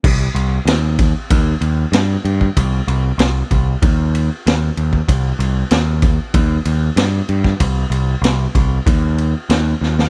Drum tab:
CC |x---------------|----------------|----------------|----------------|
RD |--x-x-x-x-x-x-x-|x-x-x-x-x-x-x-x-|x-x-x-x-x-x-x-x-|x-x-x-x-x-x-x---|
SD |----o-------o---|----o-------o---|----o-------o--o|----o-------o-oo|
BD |o-----o-o------o|o-----o-o------o|o-----o-o------o|o-----o-o-------|